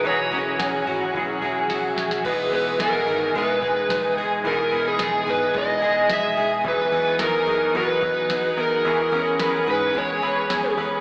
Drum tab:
CC |----------------|x---------------|----------------|----------------|
RD |x-x-x-x-x-x-x-x-|x-x-x-x-x-x-x-x-|x-x-x-x-x-x-x-x-|x-x-x-x-x-x-x-x-|
TB |----x-----------|----x-------x---|----x-------x---|----x-------x---|
SD |----o-------o-oo|----o-------o---|----o-------o---|----o-------o---|
BD |--------o-------|o---------o-----|--------o-------|o---------o-----|

CC |----------------|
RD |x-x-x-x-x-x-x-x-|
TB |----x-------x---|
SD |----o-------o---|
BD |--------o-------|